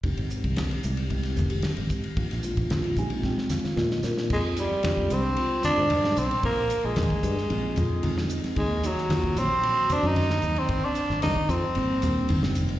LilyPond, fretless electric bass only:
\new Staff \with { instrumentName = "Fretless electric bass" } { \clef bass \time 4/4 \key f \dorian \tempo 4 = 113 f,,16 aes,,8 c,8 r16 c,4 f,,8 r16 aes,,8 r16 | bes,,16 bes,,8 bes,,8 r16 bes,,8 r4 bes,8 bes,8 | f,8. r16 f,8 c,8 r8. aes,8. ces,16 r16 | bes,,16 r8 bes,,16 ees,16 r16 g,16 r16 bes,,8 f,4~ f,16 r16 |
ees,8. r16 ees,8 bes,,8 r8. ges,8. ees,16 r16 | aes,,16 r8 aes,,16 c,16 r16 f,16 r16 aes,,8 ees,8 g,,8 f,,8 | }